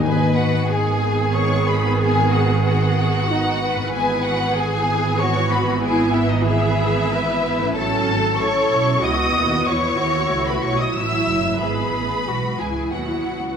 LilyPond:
<<
  \new Staff \with { instrumentName = "Violin section" } { \time 3/4 \key gis \phrygian \tempo 4 = 93 gis''8 fis''8 gis''4 cis'''8 b''8 | gis''8 fis''8 fis''2 | gis''8 fis''8 gis''4 cis'''8 b''8 | gis''8 e''16 dis''16 e''2 |
a''4 cis'''4 dis'''4 | cis'''4~ cis'''16 b''16 cis'''16 dis'''16 e'''4 | b''4. gis''8 fis''4 | }
  \new Staff \with { instrumentName = "Violin section" } { \time 3/4 \key gis \phrygian gis'8 fis'8 gis'4 cis''8 b'8 | gis'8 fis'8 fis'2 | gis'8 fis'8 gis'4 cis''8 b'8 | gis'8 e'16 dis'16 e'2 |
a'4 cis''4 dis''4 | cis''4~ cis''16 b'16 cis''16 dis''16 e''4 | b'4. gis'8 fis'4 | }
  \new Staff \with { instrumentName = "Cello section" } { \time 3/4 \key gis \phrygian b'4 gis'2~ | gis'2 dis'8 b'8~ | b'4 gis'4 fis'4 | e'4 gis'4 b'4 |
a'2 fis'4 | e'8 fis'4. e'4 | gis'4 fis'8 e'4. | }
  \new Staff \with { instrumentName = "Harp" } { \time 3/4 \key gis \phrygian <gis, b gis' dis''>2.~ | <gis, b gis' dis''>2. | <gis, b e' b'>2.~ | <gis, b e' b'>2. |
<a cis' e' cis''>2.~ | <a cis' e' cis''>2. | <gis, b e' e''>2. | }
  \new Staff \with { instrumentName = "Viola section" } { \time 3/4 \key gis \phrygian << { b2.~ | b2. | b2.~ | b2. |
cis'4 cis'4 b4~ | b4 a4 a4 | b4 gis4 b4 | } \\ { dis2.~ | dis2. | e2.~ | e2. |
fis4 e'2 | e'2 fis4 | e4 e4 fis4 | } >> }
  \new Staff \with { instrumentName = "Double bass section" } { \clef bass \time 3/4 \key gis \phrygian gis,,2.~ | gis,,2. | gis,,2.~ | gis,,2. |
a,,8 gis,,8 a,,8 b,,8 cis,8 dis,8 | e,8 dis,8 cis,8 b,,8 a,,8 fis,,8 | gis,,8 a,,8 b,,8 cis,8 dis,8 cis,8 | }
>>